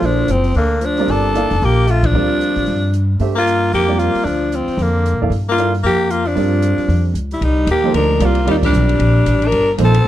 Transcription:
Already playing: upright piano F3 A#3 E4 A4 C5
0.02 upright bass A#1, tenor saxophone F3, alto saxophone D4, open hi-hat
0.28 upright bass F#1, tenor saxophone F3, alto saxophone C4, closed hi-hat
0.44 open hi-hat
0.54 upright bass D2, tenor saxophone D3, alto saxophone A#3, open hi-hat
0.81 tenor saxophone F3, closed hi-hat
0.85 alto saxophone D4
0.97 upright piano G3 C4 F4 A#4 D5, open hi-hat
1.08 upright bass G1, tenor saxophone D4, alto saxophone A4, open hi-hat
1.35 upright piano A#3 E4 A4 D5 F5, closed hi-hat
1.51 upright bass F1, open hi-hat
1.62 upright bass A#1, tenor saxophone A#3, alto saxophone G4, open hi-hat
1.87 tenor saxophone A3, alto saxophone F4, closed hi-hat
2.03 tenor saxophone F3, alto saxophone D4, kick, ride
2.13 upright bass D2, upright piano G3 C4 F4 A#4 D5
2.41 closed hi-hat
2.56 upright bass A1, open hi-hat
2.66 upright bass G2, open hi-hat
2.93 closed hi-hat
3.20 upright bass G2, upright piano A3 D4 G4 C5 E5, open hi-hat
3.35 tenor saxophone A#3, alto saxophone F4
3.47 closed hi-hat
3.72 upright bass F2, tenor saxophone A#3, alto saxophone G4, open hi-hat
3.87 upright piano G3 C4 F4 A#4 D5
3.98 tenor saxophone A#3, alto saxophone F4, closed hi-hat
4.14 muted upright bass stroke, open hi-hat
4.24 upright bass D2, tenor saxophone F3, alto saxophone D4, open hi-hat
4.52 tenor saxophone F3, alto saxophone C4, closed hi-hat
4.67 muted upright bass stroke, open hi-hat
4.77 upright bass F2, tenor saxophone D3, open hi-hat
4.83 alto saxophone A#3
5.06 closed hi-hat
5.13 upright bass A#2
5.21 upright bass F2, upright piano A#3 E4 A4 D5 F5
5.30 upright bass G2, open hi-hat
5.49 tenor saxophone A#3, alto saxophone F4
5.57 upright piano A#3 E4 A4 D5 F5, closed hi-hat
5.74 open hi-hat
5.83 upright bass F2, tenor saxophone A#3, alto saxophone G4, open hi-hat
6.10 tenor saxophone A#3, alto saxophone F4, closed hi-hat
6.25 tenor saxophone F3, alto saxophone D4, open hi-hat
6.35 upright bass G2, upright piano G3 C4 F4 A#4 D5, open hi-hat
6.62 closed hi-hat
6.78 muted upright bass stroke, open hi-hat
6.88 upright bass F2, open hi-hat
7.14 upright bass C#2, closed hi-hat
7.31 tenor saxophone G3, alto saxophone E4, open hi-hat
7.41 upright bass C2, tenor saxophone G3, alto saxophone D#4, ride
7.67 upright bass D#2, hi-hat pedal, ride
7.71 tenor saxophone A#3, alto saxophone G4
7.84 upright piano F3 A#3 D#4 A4 C5
7.94 upright bass D2, tenor saxophone D4, alto saxophone A#4, ride
8.20 upright bass C2, upright piano G3 C4 F4 A#4 D5, tenor saxophone A#3, hi-hat pedal, ride
8.26 alto saxophone F4
8.35 ride
8.45 upright bass D#2, upright piano G3 C4 F4 A#4 D5, tenor saxophone G3, ride
8.51 alto saxophone D#4
8.63 tenor saxophone G3, alto saxophone D4, kick, crash
8.73 upright bass B1, hi-hat pedal
8.89 ride
8.99 upright bass A#1, ride
9.26 upright bass A1, hi-hat pedal, ride
9.42 tenor saxophone D4, ride
9.47 alto saxophone A#4
9.52 upright bass G1, ride
9.78 upright bass A#1, upright piano F3 A#3 D#4 A4 C5, hi-hat pedal, ride
9.83 tenor saxophone C4, alto saxophone A4
9.94 ride
10.05 upright bass C2

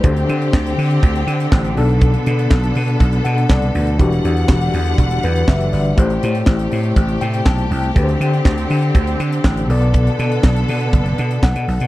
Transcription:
0.03 slap bass D2, tine electric piano D3 D4 G4 C5, string section D3 C4 G4, kick, closed hi-hat
0.16 closed hi-hat
0.29 slap bass D3, closed hi-hat
0.42 closed hi-hat
0.53 slap bass D2, kick, snare, clap
0.66 closed hi-hat
0.78 slap bass D3, open hi-hat
0.91 closed hi-hat
1.03 slap bass D2, kick, closed hi-hat
1.15 closed hi-hat
1.27 slap bass D3, closed hi-hat
1.40 closed hi-hat
1.52 slap bass A1, kick, snare, clap
1.65 closed hi-hat
1.75 slap bass B1, tine electric piano B2 B3 D4 A4, string section B3 A4, open hi-hat
1.89 closed hi-hat
2.01 kick, closed hi-hat
2.14 closed hi-hat
2.26 slap bass B2, closed hi-hat
2.39 closed hi-hat
2.51 slap bass B1, kick, snare, clap
2.63 closed hi-hat
2.75 slap bass B2, open hi-hat
2.88 closed hi-hat
3.00 slap bass B1, kick, closed hi-hat
3.12 closed hi-hat
3.25 slap bass B2, tine electric piano F#5, closed hi-hat
3.38 closed hi-hat
3.49 slap bass C2, tine electric piano D5, kick, snare, clap
3.62 closed hi-hat
3.75 slap bass D2, open hi-hat
3.87 closed hi-hat
3.98 slap bass E1, string section D3 G3 F#5, tine electric piano E3 D4 F#4 G4, kick, closed hi-hat
4.12 closed hi-hat
4.24 slap bass E2, closed hi-hat
4.37 closed hi-hat
4.48 slap bass E1, kick, snare, clap
4.61 closed hi-hat
4.74 slap bass E2, open hi-hat
4.86 closed hi-hat
4.98 slap bass E1, kick, closed hi-hat
5.11 closed hi-hat
5.23 slap bass E2, tine electric piano B4, closed hi-hat
5.36 closed hi-hat
5.48 slap bass F#1, tine electric piano E5, kick, snare, clap
5.60 closed hi-hat
5.73 slap bass G1, tine electric piano D5, snare, open hi-hat
5.85 closed hi-hat
5.96 slap bass A1, string section C3 A3 G4, tine electric piano A3 E4 G4 C5, kick, closed hi-hat
6.10 closed hi-hat
6.23 slap bass A2, closed hi-hat
6.35 closed hi-hat
6.46 slap bass A1, kick, snare, clap
6.59 closed hi-hat
6.71 slap bass A2, open hi-hat
6.84 closed hi-hat
6.96 slap bass A1, kick, closed hi-hat
7.08 closed hi-hat
7.21 slap bass A2, tine electric piano G5, closed hi-hat
7.34 closed hi-hat
7.46 slap bass B1, tine electric piano A5, kick, snare, clap
7.58 closed hi-hat
7.71 slap bass C2, tine electric piano G5, open hi-hat
7.84 closed hi-hat
7.95 slap bass D2, tine electric piano D3 D4 G4 B4, string section D3 C4, kick, closed hi-hat
8.04 tine electric piano C5
8.09 closed hi-hat
8.20 slap bass D3, closed hi-hat
8.34 closed hi-hat
8.45 slap bass D2, kick, snare, clap
8.58 closed hi-hat
8.70 slap bass D3, open hi-hat
8.82 closed hi-hat
8.95 slap bass D2, kick, closed hi-hat
9.07 closed hi-hat
9.20 slap bass D3, closed hi-hat
9.32 closed hi-hat
9.44 slap bass A1, kick, snare, clap
9.57 closed hi-hat
9.68 slap bass B1, tine electric piano B2 B3 A4 D5, string section D3 B3 A4, open hi-hat
9.82 closed hi-hat
9.94 kick, closed hi-hat
10.07 closed hi-hat
10.19 slap bass B2, closed hi-hat
10.32 closed hi-hat
10.43 slap bass B1, kick, snare, clap
10.56 closed hi-hat
10.68 slap bass B2, open hi-hat
10.81 closed hi-hat
10.93 slap bass F#1, kick, closed hi-hat
11.06 closed hi-hat
11.18 slap bass B2, closed hi-hat
11.31 closed hi-hat
11.43 slap bass B1, tine electric piano F#5, kick, snare, clap
11.55 slap bass B2, closed hi-hat
11.68 slap bass B1, snare, open hi-hat
11.80 slap bass B2, closed hi-hat

